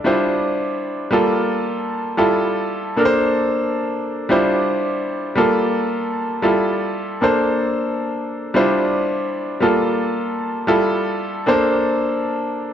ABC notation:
X:1
M:4/4
L:1/8
Q:"Swing 16ths" 1/4=113
K:Dm
V:1 name="Grand piano"
[G,DEFc]4 [G,B,FA]4 | [G,EFA]3 [B,DABc]4- [B,DABc] | [G,DEFc]4 [G,B,FA]4 | [G,EFA]3 [B,DAc]4- [B,DAc] |
[G,DEFc]4 [G,B,FA]4 | [G,EFA]3 [B,DAc]4- [B,DAc] |]